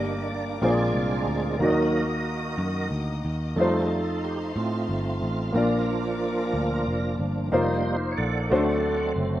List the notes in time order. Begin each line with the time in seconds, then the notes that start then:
Already playing: G1 G2 A#3 D4 G4 D5 D#5 G5 A#5 D6
0.22 D#5
0.30 D5
0.61 A#1 A#2 G#3 A#3 C4 D4 F4 G#4 C5 D5 F5 G#5
0.70 D5
0.94 C2
1.27 D2
1.53 D5
1.59 D#2 D#3 F#3 A#3 D#4 F#4 A#4 D#5 F#5 D#6
1.64 D5
1.70 D#5
2.58 F#2
2.91 D2
3.25 D#2
3.56 F2 G3 A3 D#4 F4 A4 C5 F5 A5 C6
3.61 C5
3.82 G#4
3.91 A4
4.25 G4
4.56 A2 A3 C4 F4
4.89 G1
5.22 A1
5.52 A#1 A#2 F3 A#3 D4 F4 A#4 D5 A#5 D6
5.57 D5
6.54 D2
6.86 F1
7.19 G1 F3 A#3 D4
7.52 F1 G3 A#3 D#4 F4 C5
8.11 C#5
8.17 A#1 A4 D5 F#5
8.50 D2 D3 F#3 A3 C4 D4 F#4 C5
9.16 F#1